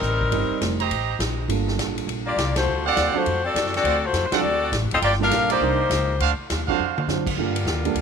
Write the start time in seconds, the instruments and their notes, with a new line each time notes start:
Already playing: saxophone section G3 C4 D#4 A#4
0.02 upright bass A1, hi-hat pedal
0.21 kick
0.32 upright bass G1, grand piano G3 C4 D#4 A#4 D5, ride
0.50 muted upright bass stroke
0.61 upright bass F1, snare, hi-hat pedal, ride
0.80 trumpet section G4 C5 D#5 A#5, ride
0.91 upright bass A1, ride
1.19 upright bass A#1, snare, hi-hat pedal, ride
1.48 upright bass G1, grand piano G3 A#3 D4 F4 A4, ride
1.68 snare
1.77 upright bass A1, snare, hi-hat pedal, ride
1.98 ride
2.07 upright bass A#1, ride
2.26 saxophone section A#3 F4 G4 D5
2.36 upright bass C2, snare, hi-hat pedal, ride
2.56 saxophone section A3 F4 F#4 C5, snare, ride
2.66 upright bass D2
2.86 saxophone section C4 F#4 A4 D5, trumpet section C5 D5 F5 F#5
2.96 upright bass D#2, snare, hi-hat pedal, ride
3.14 grand piano F#3 C4 D4 F4 A4, saxophone section A3 F4 F#4 C5, muted upright bass stroke
3.26 upright bass F2, ride
3.45 saxophone section C4 F#4 A4 D5
3.54 upright bass F#2, snare, hi-hat pedal, ride
3.66 snare
3.74 saxophone section C4 F#4 A4 D5, snare, ride
3.83 upright bass D2, trumpet section F4 C5 D5 F#5, ride
4.05 saxophone section A3 F4 F#4 C5
4.13 upright bass F2, snare, hi-hat pedal, ride
4.26 saxophone section C5
4.31 grand piano F#3 C4 D4 F4 A4, saxophone section C4 F#4 A4 D5, trumpet section F4 C5 D5 F#5, muted upright bass stroke, snare, ride
4.42 upright bass D2
4.72 upright bass A1, snare, hi-hat pedal, ride
4.82 upright bass F#1
4.91 upright bass D1, saxophone section C4 F4 A4 D#5, ride
5.02 upright bass G1, saxophone section A#3 F4 G4 D5, trumpet section F4 A#4 D5 G5, ride
5.12 snare
5.19 grand piano G3 A#3 D4 F4 A4, saxophone section D4 G4 A#4 F5, snare
5.31 upright bass A#1, snare, hi-hat pedal, ride
5.50 saxophone section A#3 D#4 G4 C5, trumpet section D#4 A#4 C5 D5, ride
5.60 upright bass C2, grand piano G3 C4 D4 D#4 A#4
5.90 upright bass C#2, snare, hi-hat pedal, ride
6.20 upright bass D2, trumpet section D4 F#4 C5 F5, ride
6.50 upright bass D#2, snare, hi-hat pedal, ride
6.68 grand piano F#3 C4 D4 F4 A4, trumpet section D4 F#4 C5 F5, kick
6.79 upright bass F2
6.98 high tom
7.07 upright bass F#2, grand piano F#3 C4 D4 F4 C5, snare, hi-hat pedal
7.27 kick, crash
7.36 upright bass G2, saxophone section D3 G3 A#3 F4, grand piano G3 A#3 D4 F4 A4
7.56 ride
7.65 upright bass D#2, snare, hi-hat pedal
7.85 grand piano G3 A#3 D4 F4 A4, ride
7.94 upright bass D2, ride